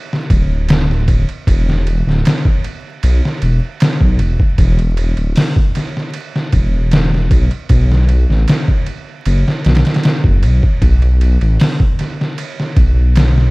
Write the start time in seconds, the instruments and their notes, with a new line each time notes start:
0.13 snare
0.30 detuned saw bass D1, kick, ride
0.69 snare, ride
0.91 snare
1.08 kick, ride
1.29 ride
1.47 detuned saw bass E1, kick, ride
1.69 snare
1.87 ride
2.07 detuned saw bass D1, snare
2.25 snare, ride
2.45 kick
2.64 ride
3.03 detuned saw bass B1, ride
3.25 snare
3.42 detuned saw bass E1, ride
3.80 snare, ride
4.01 detuned saw bass B1, kick
4.19 detuned saw bass E1, ride
4.40 kick
4.58 detuned saw bass E1, kick, ride
4.79 ride
4.97 ride
5.17 detuned saw bass D1, ride
5.36 snare, open hi-hat
5.56 kick
5.75 snare, ride
5.97 snare
6.14 ride
6.36 snare
6.52 detuned saw bass E1, kick, ride
6.91 snare, ride
7.14 snare
7.31 detuned saw bass B1, kick, ride
7.51 ride
7.69 detuned saw bass B1, kick, ride
7.92 snare
8.09 ride
8.29 detuned saw bass A1, snare
8.48 snare, ride
8.68 kick
8.86 ride
9.25 detuned saw bass F#1, ride
9.48 snare
9.65 detuned saw bass B1, snare, ride
9.75 snare, ride
9.85 snare, ride
9.94 snare, ride
10.03 snare, ride
10.24 detuned saw bass F#1, kick
10.43 detuned saw bass B1, ride
10.63 kick
10.82 detuned saw bass B1, kick, ride
11.02 ride
11.21 ride
11.41 detuned saw bass A1, ride
11.60 snare, open hi-hat
11.80 kick
11.99 snare, ride
12.21 snare
12.38 ride
12.60 snare
12.76 detuned saw bass B1, kick, ride
13.16 snare, ride
13.38 snare